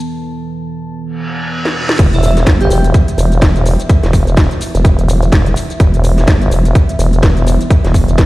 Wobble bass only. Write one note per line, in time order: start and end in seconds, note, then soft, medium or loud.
1.99 2.45 E1 loud
2.47 2.69 G1 loud
2.70 2.93 E1 loud
3.18 3.40 E1 loud
3.42 3.77 E1 loud
4.03 4.25 E1 loud
4.27 4.49 E1 medium
4.75 4.96 E1 loud
4.99 5.31 E1 medium
5.32 5.55 E1 loud
5.80 6.26 E1 loud
6.28 6.50 G1 loud
6.51 6.74 E1 loud
6.99 7.21 E1 medium
7.23 7.58 E1 loud
7.84 8.06 E1 loud
8.08 8.26 E1 medium